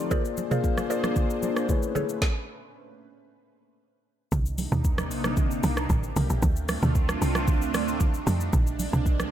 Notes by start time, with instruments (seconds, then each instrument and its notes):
Already playing: tine electric piano F3 C4 D#4 G4 A4 D5, analog synth pad D#4 F4 G4
0.10 tine electric piano A#3 F4 G#4 C5 D5, analog synth pad A#3 D4 G#4 C5, synth pluck G#4 A#4 C5 D5, kick, low conga, shaker
0.25 shaker
0.37 high conga, shaker
0.50 tine electric piano A#3 F4 G#4 C5 F5, synth pluck G#4 A#4 C5 D5, mid tom, high conga, shaker
0.64 kick, shaker
0.78 cross-stick, high conga, shaker
0.89 tine electric piano A#3 F4 G#4 C5 D5, synth pluck G#4 A#4 C5 D5, shaker
1.04 cross-stick, high conga, shaker
1.16 kick, low conga, shaker
1.30 shaker
1.42 tine electric piano A#3 F4 G#4 C5 D5, high conga, shaker
1.56 cross-stick, shaker
1.68 tine electric piano A3 E4 G#4 B4 C#5, analog synth pad A3 C#4 B4, kick, high conga, low conga, shaker
1.83 shaker
1.95 synth pluck G#4 A4 B4 C#5, high conga, low conga, shaker
2.09 shaker
2.22 kick, snare
4.32 log drum bass C2, analog synth pad C3 A#3 D4 D#4, kick, low conga, shaker
4.46 shaker
4.58 open hi-hat, high conga, shaker
4.72 log drum bass D#2, mid tom, high conga, shaker
4.84 kick, shaker
4.98 cross-stick, high conga, shaker
5.11 log drum bass A#1, open hi-hat, shaker
5.24 cross-stick, high conga, shaker
5.37 kick, low conga, shaker
5.51 shaker
5.63 log drum bass C2, open hi-hat, high conga, shaker
5.77 cross-stick, shaker
5.90 log drum bass A1, analog synth pad C#3 A3 G4, kick, high conga, low conga, shaker
6.03 shaker
6.16 log drum bass C2, open hi-hat, high conga, low conga, shaker
6.30 log drum bass A#1, shaker
6.42 log drum bass D2, analog synth pad C4 D4 F4, kick, low conga, shaker
6.56 shaker
6.69 cross-stick, open hi-hat, high conga, shaker
6.83 log drum bass D2, mid tom, high conga, shaker
6.95 kick, shaker
7.09 cross-stick, high conga, shaker
7.22 log drum bass C2, open hi-hat, shaker
7.35 cross-stick, high conga, shaker
7.48 kick, low conga, shaker
7.62 shaker
7.74 log drum bass D2, cross-stick, open hi-hat, high conga, shaker
7.88 shaker
8.00 analog synth pad G3 D#4, kick, high conga, low conga, shaker
8.14 shaker
8.27 log drum bass F2, open hi-hat, high conga, low conga, shaker
8.40 shaker
8.53 log drum bass A#1, analog synth pad C3 G#3 A#3 D4, kick, low conga, shaker
8.67 shaker
8.79 open hi-hat, high conga, shaker
8.93 log drum bass C2, mid tom, high conga, shaker
9.06 kick, shaker
9.20 cross-stick, high conga, shaker